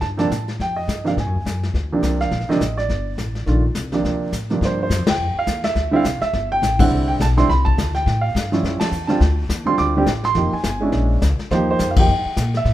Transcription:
0.01 G2 A5, brush sweep, kick, snare
0.17 C3 F3 A#3 D4 A5, snare
0.30 A2, kick, snare, hi-hat pedal
0.48 snare
0.59 F2 G5, brush sweep, kick, snare
0.76 D#5
0.88 G2, kick, snare, hi-hat pedal
1.04 C3 F3 A#3 D4 F5, snare
1.17 G#2 G#5, brush sweep, kick, snare
1.26 F#2
1.35 D#2
1.45 F#2, kick, snare, hi-hat pedal
1.63 snare
1.74 D2, brush sweep, kick, snare
1.92 C3 F3 A#3 D4
2.03 C2, kick, snare, hi-hat pedal
2.21 F5, snare
2.31 A#1, brush sweep, kick, snare
2.41 snare
2.49 C3 F3 A#3 D4 D#5, muted upright bass stroke, snare
2.60 A1, kick, snare, hi-hat pedal
2.77 D5, snare
2.89 G1, brush sweep, kick, snare
3.18 A1, kick, snare, hi-hat pedal
3.35 snare
3.46 A#1 D#3 A3 D4 F4, brush sweep, kick, snare
3.75 C2, kick, snare, hi-hat pedal
3.92 C3 F3 A#3 D4, snare
4.04 D2, brush sweep, kick, snare
4.32 A2, kick, snare, hi-hat pedal
4.50 G2 C3 F3 A#3 D4, snare
4.61 G2, brush sweep, kick, snare
4.65 C5
4.83 C5
4.90 F#2, kick, snare, hi-hat pedal
4.99 F2
5.07 D2 G5, snare, ride
5.18 F2, brush sweep
5.34 muted upright bass stroke
5.39 F5
5.47 D#2, kick, snare, hi-hat pedal
5.64 E5, snare
5.75 D2, brush sweep, kick, snare
5.91 D3 G3 C4 E4
5.96 F5
6.04 C2, kick, snare, hi-hat pedal
6.21 E5, muted upright bass stroke, snare
6.33 G1, brush sweep, kick, snare
6.52 G5
6.62 A1, kick, snare, hi-hat pedal
6.79 D3 G3 C4 E4 F#5, kick, ride
6.91 C2, brush sweep
7.08 G5
7.20 B1 A5, kick, snare, hi-hat pedal
7.37 D3 G3 C4 E4 C6, snare
7.48 C2 B5, brush sweep, kick, snare
7.65 A5, kick
7.77 D2, kick, snare, hi-hat pedal
7.94 G5, snare
8.06 A2, brush sweep, kick, snare
8.21 F5
8.35 G2, kick, snare, hi-hat pedal
8.52 F3 G3 C#4 E4, snare
8.63 F2, brush sweep, kick, snare
8.80 A5, muted upright bass stroke, snare, ride
8.91 E2, hi-hat pedal
9.07 D3 G3 C4 F4 A5, snare
9.20 D2, brush sweep, kick, snare
9.49 D#2, kick, snare, hi-hat pedal
9.65 D3 G3 C4 F4 C6
9.78 D2 D6, brush sweep, kick, snare
9.96 D3 G3 C4 G4
10.06 A1, kick, snare, hi-hat pedal
10.24 C6, snare
10.35 F1 F3 A#3 D#4 G4, brush sweep, kick, snare
10.52 G#5, muted upright bass stroke
10.64 G1 G#5, kick, snare, hi-hat pedal
10.81 G#3 C#4 D4 E4
10.92 A#1, brush sweep, kick, snare
11.22 C#2, kick, snare, hi-hat pedal
11.38 muted upright bass stroke, snare
11.51 D#2 F3 A#3 D#4 G4 C5, brush sweep, kick, snare
11.71 C5
11.79 F2, kick, snare, hi-hat pedal
11.91 F5
11.96 F3 A#3 D#4 G4 G5, kick, ride
12.08 G2, brush sweep
12.25 muted upright bass stroke
12.37 A#2, kick, snare, hi-hat pedal
12.54 E5, snare
12.65 A2, brush sweep, kick, snare

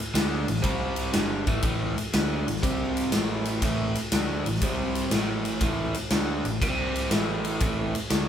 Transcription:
0.14 D2 D3 A3 D4, snare, ride
0.47 A1 A2 E3, ride
0.56 snare
0.63 C2 C3 G3 C4, kick, ride
0.96 ride
1.13 G1 G2 D3 G3, snare, ride
1.47 A1 A2 E3 A3, kick, ride
1.62 A1 A2 E3 A3, kick, ride
1.97 muted overdriven electric guitar stroke, muted picked electric bass stroke, ride
2.13 D2 D3 A3 D4, snare, ride
2.46 A1 A2 E3, ride
2.56 snare
2.62 C2 C3 G3 C4, kick, ride
2.97 ride
3.12 A1 A2 E3 A3, snare, ride
3.45 ride
3.62 A1 A2 E3 A3, kick, ride
3.95 muted picked electric bass stroke, muted overdriven electric guitar stroke, ride
4.12 D2 D3 A3 D4, snare, ride
4.46 A1 A2 E3, ride
4.55 snare
4.61 C2 C3 G3 C4, kick, ride
4.95 ride
5.10 A1 A2 E3 A3, snare, ride
5.45 ride
5.61 A1 A2 E3 A3, kick, ride
5.94 muted picked electric bass stroke, muted overdriven electric guitar stroke, ride
6.10 D2 D3 A3 D4, snare, ride
6.45 A1 A2 E3, ride
6.61 C2 C3 G3 C4, kick, ride
6.95 ride
7.11 A1 A2 E3 A3, snare, ride
7.45 ride
7.60 A1 A2 E3 A3, kick, ride
7.95 muted picked electric bass stroke, muted overdriven electric guitar stroke, ride
8.10 D2 D3 A3 D4, snare, ride

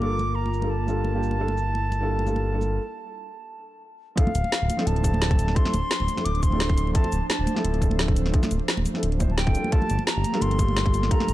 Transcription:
Already playing: G1 A#3 F4 A#4
0.00 G3 A#3 D4 F4 A4 D6, muted conga
0.19 muted conga, shaker
0.35 A#5
0.46 muted conga
0.54 shaker
0.61 G3 A#3 D4 F4 A4, muted conga
0.70 A5
0.86 G3 A#3 D4 F4 A4, muted conga, shaker
1.04 muted conga
1.13 G3 A#3 D4 F4 G4
1.23 E4, shaker
1.31 muted conga
1.38 G3 A#3 D4 F4 A4
1.48 muted conga
1.58 shaker
1.75 muted conga
1.92 muted conga, shaker
2.00 G3 A#3 D4 F4 A4
2.19 muted conga
2.26 G3 A#3 D4 F4 A4, high conga, shaker
2.36 muted conga
2.52 G3 A#3 D4 F4 A4
2.61 muted conga, shaker
4.16 F3 C4 D4 E4 A4 C5 F5, kick, closed hi-hat
4.27 muted conga, high conga
4.35 D1, closed hi-hat, shaker
4.44 muted conga
4.52 snare, closed hi-hat
4.61 D1
4.70 closed hi-hat, muted conga, high conga, shaker
4.77 F3 C4 D4 E4 A4, snare
4.87 D1 A5, closed hi-hat, muted conga
4.96 closed hi-hat
5.02 F3 C4 D4 E4 A4, kick, closed hi-hat, shaker
5.14 D1, muted conga, high conga
5.22 snare, closed hi-hat
5.29 D1 F3 C4 D4 E4 A4, kick, closed hi-hat, muted conga
5.39 closed hi-hat, shaker
5.48 snare
5.55 F3 C4 D4 E4 A4 C6, kick, closed hi-hat, muted conga
5.65 snare, high conga
5.73 D1, closed hi-hat, muted conga, shaker
5.91 snare, closed hi-hat
6.00 D1, muted conga
6.08 closed hi-hat, high conga, shaker
6.16 F3 C4 D4 E4 A4, snare, muted conga
6.25 D1 D6, closed hi-hat
6.35 closed hi-hat
6.42 C6, kick, closed hi-hat, muted conga, shaker
6.49 D1 F3 C4 D4, high conga
6.54 E4 A4
6.60 snare, closed hi-hat, muted conga
6.69 D1, kick, closed hi-hat
6.78 closed hi-hat, shaker
6.87 muted conga
6.93 F3 C4 D4 E4 A4 A5, kick, closed hi-hat
7.04 muted conga, high conga
7.12 D1, closed hi-hat, shaker
7.29 A5, snare, closed hi-hat, muted conga
7.39 D1
7.47 closed hi-hat, muted conga, high conga, shaker
7.54 F3 C4 D4 E4 A4, snare
7.64 D1, closed hi-hat
7.74 closed hi-hat, muted conga
7.80 F3 C4 D4 E4 A4, kick, closed hi-hat, shaker
7.91 D1, muted conga, high conga
7.99 snare, closed hi-hat
8.07 D1 F3 C4 D4 E4 A4, kick, closed hi-hat
8.16 closed hi-hat, muted conga, shaker
8.26 snare
8.32 F3 C4 D4 E4 A4, kick, closed hi-hat, muted conga
8.43 snare, high conga, shaker
8.51 D1, closed hi-hat, shaker
8.59 muted conga
8.68 snare, closed hi-hat
8.77 D1, muted conga
8.86 closed hi-hat, high conga, shaker
8.94 F3 C4 D4 E4 A4, snare
9.03 D1, closed hi-hat, muted conga
9.12 closed hi-hat
9.19 F3 C4 D4 E4 C5, kick, closed hi-hat, muted conga, shaker
9.29 D1 A5, high conga
9.37 G5, snare, closed hi-hat
9.46 D1 F3 C4 D4 E4 A4, kick, closed hi-hat, muted conga
9.54 G3 A#3 D4 F4 G4 A4, closed hi-hat, shaker
9.64 muted conga
9.71 G3 A#3 D4 F4 A4 A5, kick, closed hi-hat
9.82 muted conga, high conga
9.90 G1, closed hi-hat, shaker
9.99 muted conga
10.07 A#5, snare, closed hi-hat
10.16 G1
10.24 closed hi-hat, muted conga, high conga, shaker
10.32 G3 A#3 D4 F4 A4, snare
10.41 G1 C6, closed hi-hat, muted conga
10.51 closed hi-hat
10.58 G3 A#3 D4 F4 A4, kick, closed hi-hat, shaker
10.68 G1, muted conga, high conga
10.77 snare, closed hi-hat
10.84 G1 G3 A#3 D4 F4 A4, kick, closed hi-hat, muted conga
10.94 closed hi-hat, shaker
11.03 snare
11.10 G3 A#3 D4 F4 A4 A#5, kick, closed hi-hat, muted conga
11.20 snare, high conga
11.28 G1, closed hi-hat, muted conga, shaker

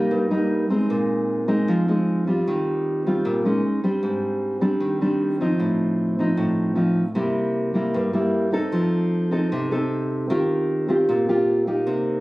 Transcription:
Already playing: G3 A#3 D#4
0.11 G2
0.31 G3 A#3 D#4
0.70 G#3 C4 D#4
0.90 A#2
1.48 G#3 C4 D#4
1.68 F3
1.88 G#3 C4 D#4
2.27 G3 C4 F4
2.47 D#3
3.06 G3 C4 F4
3.25 A#2
3.45 G#3 C#4 D#4
3.84 G3 C4 D4
4.03 G#2
4.61 G3 C4 D4
4.80 D#3
5.01 G3 C4 D4
5.40 F3 C4 D#4
5.60 A2
6.19 F3 C4 D#4
6.37 A2
6.75 F3 C4 D#4
7.15 C3 G3 A#3 E4
7.74 G3 A#3 E4
7.94 G2
8.13 G3 A#3 E4
8.52 C4 D#4 A4
8.72 F3
9.31 C4 D#4 A4
9.52 C3
9.71 C4 D#4 A4
10.30 D#3 C4 F4 G4
10.88 C4 F4 G4
11.09 A#2
11.29 C4 F4 G4
11.67 A#3 D#4 G4
11.87 C3

